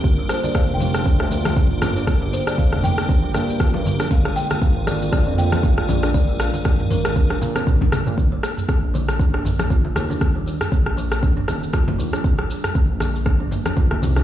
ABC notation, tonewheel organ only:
X:1
M:4/4
L:1/16
Q:"Swing 16ths" 1/4=118
K:Eblyd
V:1 name="Tonewheel organ"
[G,DFB]3 [G,DFB]6- [G,DFB] [G,DFB]3 [G,DFB]3 | [G,DFB]3 [G,DFB]6- [G,DFB] [G,DFB]3 [G,DFB]3 | [_A,DFB]3 [A,DFB]6- [A,DFB] [A,DFB]3 [A,DFB]3 | [_A,DFB]3 [A,DFB]6- [A,DFB] z6 |
z16 | z16 | z16 |]